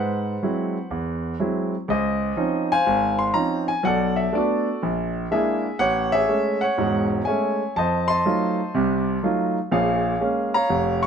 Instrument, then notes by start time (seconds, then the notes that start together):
grand piano
Already playing: G#2 B4 C5 F#5
0.43 F#3 G#3 C4 E4
0.91 E2
1.40 F#3 G#3 C4 E4
1.88 C#2 G#4 C5 D#5
2.37 F3 C4 C#4 D#4
2.72 C5 F5 G#5
2.87 G#1
3.19 C6
3.34 F3 C4 C#4 D#4 A#5
3.68 G#5
3.83 B1 A4 D5 F#5
4.16 E5
4.33 A3 B3 D4 D5
4.37 F#4 A4
4.83 A#1
5.31 G#3 A#3 D4 E4 G#4 E5
5.79 A1 C#5 F#5
6.12 G#4 C#5 E5
6.28 G#3 A3 C#4
6.61 C#5 F#5
6.78 E1 G#2
7.25 G#3 A3 C#4 C#5 E5 G#5
7.76 F2 C5 D#5 A5
8.08 D#5 A5 C6
8.25 F#3 A3 D#4 F4
8.74 C2 C3
9.23 F#3 A3 D#4 F4
9.71 A#1 A#2 G#4 C#5 F5
10.21 G#3 A#3 C#4
10.54 C#5 F5 A#5
10.69 F1
11.03 C#6